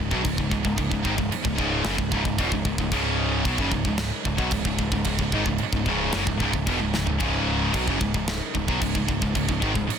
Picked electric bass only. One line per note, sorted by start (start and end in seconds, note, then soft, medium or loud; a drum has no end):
0.00 0.10 C#1 medium
0.12 0.24 B1 medium
0.25 0.37 C#1 medium
0.38 0.50 C#1 medium
0.52 0.64 C#1 medium
0.65 0.77 C#1 medium
0.78 0.90 C#1 medium
0.92 1.04 C#1 medium
1.05 1.17 G#1 medium
1.18 1.31 C#1 medium
1.32 muted picked electric bass stroke soft
1.45 1.57 C#1 medium
1.59 1.83 C#1 loud
1.85 1.97 F#1 loud
1.99 2.11 C#1 medium
2.12 2.24 C#1 loud
2.25 2.38 C#1 medium
2.39 2.51 E1 loud
2.52 2.64 C#1 medium
2.65 2.78 C#1 medium
2.79 2.91 C#1 medium
2.92 3.42 C#1 medium
3.45 3.58 B1 medium
3.59 3.71 F#1 loud
3.72 3.84 C#1 medium
3.85 4.10 C#1 medium
4.26 4.38 C#1 medium
4.38 4.51 B1 loud
4.52 4.65 C#1 medium
4.65 4.78 C#1 medium
4.79 4.91 C#1 medium
4.91 5.05 C#1 loud
5.06 5.19 C#1 medium
5.19 5.32 C#1 medium
5.32 5.45 G#1 loud
5.46 5.59 C#1 medium
5.62 muted picked electric bass stroke soft
5.73 5.86 C#1 medium
5.87 6.12 C#1 loud
6.14 6.26 F#1 medium
6.28 6.40 C#1 medium
6.41 6.53 C#1 loud
6.54 6.66 C#1 medium
6.68 6.80 E1 loud
6.82 6.94 C#1 medium
6.96 7.08 C#1 medium
7.08 7.20 C#1 medium
7.21 7.70 C#1 medium
7.74 7.87 B1 medium
7.88 8.00 F#1 loud
8.01 8.13 C#1 medium
8.15 8.39 C#1 medium
8.55 8.67 C#1 medium
8.68 8.80 B1 medium
8.82 8.94 C#1 medium
8.95 9.07 C#1 medium
9.09 9.21 C#1 medium
9.22 9.34 C#1 loud
9.35 9.47 C#1 medium
9.49 9.61 C#1 medium
9.63 9.74 G#1 medium
9.76 9.88 C#1 medium
9.89 muted picked electric bass stroke soft